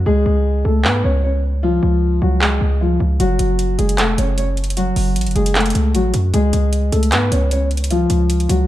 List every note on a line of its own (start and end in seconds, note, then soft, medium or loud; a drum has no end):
0.06 0.25 C#2 loud
0.06 0.62 G#3 medium
0.06 0.62 G#4 loud
0.26 0.63 C#2 loud
0.65 0.86 C#2 loud
0.65 0.81 A3 medium
0.65 0.81 A4 medium
0.85 1.03 G#2 loud
0.85 1.01 B3 medium
0.85 1.00 B4 medium
0.85 clap loud
1.04 1.80 C#2 loud
1.04 1.20 C#4 medium
1.04 1.20 C#5 medium
1.24 1.40 C#4 medium
1.24 1.39 C#5 medium
1.63 2.19 F3 medium
1.63 2.18 F4 loud
1.83 2.20 C#2 loud
2.22 2.59 C#2 loud
2.22 2.38 F#3 medium
2.22 2.37 F#4 medium
2.41 2.78 G#3 medium
2.41 2.78 G#4 medium
2.41 clap loud
2.61 2.99 C#2 loud
2.81 2.97 F3 medium
2.81 2.96 F4 medium
3.00 3.19 C#2 loud
3.20 3.39 F#1 loud
3.20 3.76 F#3 medium
3.20 3.75 F#4 loud
3.20 closed hi-hat medium
3.39 3.77 F#1 loud
3.39 closed hi-hat medium
3.59 closed hi-hat medium
3.79 4.00 F#1 loud
3.79 3.95 G#3 medium
3.79 3.94 G#4 medium
3.79 closed hi-hat medium
3.89 closed hi-hat medium
3.98 4.17 F1 loud
3.98 4.14 A3 medium
3.98 4.14 A4 medium
3.98 clap loud
3.98 closed hi-hat medium
4.18 4.93 F#1 loud
4.18 4.34 C#4 medium
4.18 4.34 C#5 medium
4.18 closed hi-hat medium
4.38 4.54 C#4 medium
4.38 4.53 C#5 medium
4.38 closed hi-hat medium
4.57 closed hi-hat soft
4.64 closed hi-hat medium
4.70 closed hi-hat medium
4.77 5.33 F#3 medium
4.77 5.32 F#4 loud
4.77 closed hi-hat medium
4.96 5.17 F#1 loud
4.96 open hi-hat medium
5.16 5.28 A1 loud
5.16 closed hi-hat medium
5.21 closed hi-hat medium
5.26 5.35 F#1 loud
5.26 closed hi-hat medium
5.31 closed hi-hat soft
5.35 5.73 F#1 loud
5.35 5.52 G#3 medium
5.35 5.51 G#4 medium
5.35 closed hi-hat soft
5.46 closed hi-hat medium
5.55 5.92 A3 medium
5.55 5.92 A4 medium
5.55 clap loud
5.55 closed hi-hat soft
5.60 closed hi-hat medium
5.66 closed hi-hat medium
5.70 closed hi-hat medium
5.75 5.96 C#2 loud
5.75 closed hi-hat medium
5.94 6.13 A1 loud
5.94 6.11 F#3 medium
5.94 6.10 F#4 medium
5.94 closed hi-hat medium
6.14 6.33 F#2 loud
6.14 closed hi-hat medium
6.34 6.52 C#2 loud
6.34 6.89 G#3 medium
6.34 6.89 G#4 loud
6.34 closed hi-hat medium
6.53 6.91 C#2 loud
6.53 closed hi-hat medium
6.73 closed hi-hat medium
6.92 7.14 C#2 loud
6.92 7.08 A3 medium
6.92 7.08 A4 medium
6.92 closed hi-hat medium
7.03 closed hi-hat medium
7.12 7.31 G#2 loud
7.12 7.28 B3 medium
7.12 7.28 B4 loud
7.12 clap loud
7.12 closed hi-hat medium
7.32 8.07 C#2 loud
7.32 7.48 C#4 medium
7.32 7.47 C#5 medium
7.32 closed hi-hat medium
7.51 7.67 C#4 medium
7.51 7.67 C#5 medium
7.51 closed hi-hat medium
7.71 closed hi-hat soft
7.77 closed hi-hat medium
7.84 closed hi-hat medium
7.91 8.46 F3 medium
7.91 8.46 F4 loud
7.91 closed hi-hat medium
8.10 8.48 C#2 loud
8.10 closed hi-hat medium
8.30 closed hi-hat medium
8.40 closed hi-hat soft
8.49 8.67 C#2 loud
8.49 8.65 F#3 medium
8.49 8.65 F#4 medium
8.49 closed hi-hat medium